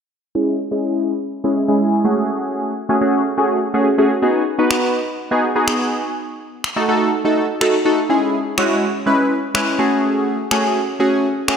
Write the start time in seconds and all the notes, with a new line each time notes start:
0.35 G#3 C#4 E4 G#4
0.71 G#3 C#4 E4 G#4
1.44 G#3 C#4 E4 G#4
1.68 G#3 C#4 E4 G#4
2.04 A3 C#4 F#4 G#4
2.89 A3 C#4 F#4 G#4
3.01 A3 C#4 F#4 G#4
3.37 A3 C#4 F#4 G#4
3.74 A3 C#4 F#4 G#4
3.98 A3 C#4 F#4 G#4
4.22 B3 D#4 F#4 G#4
4.58 B3 D#4 F#4 B4
4.71 finger snap
5.31 B3 D#4 F#4 G#4
5.55 B3 D#4 F#4 G#4
5.68 finger snap
6.64 finger snap
6.76 A3 D#4 F#4 A4
6.88 A3 D#4 F#4 A4
7.25 A3 D#4 F#4 A4
7.61 A3 D#4 F#4 A4, finger snap
7.85 A3 D#4 F#4 A4
8.09 G#3 C#4 E4 G#4
8.58 G#3 C#4 E4 F#4, finger snap
9.06 G#3 C#4 E4 B4
9.54 G#3 C#4 E4 B4, finger snap
9.79 A3 C#4 F#4 G#4
10.51 A3 C#4 F#4 G#4, finger snap
10.99 A3 C#4 F#4 G#4
11.48 A3 C#4 F#4 G#4, finger snap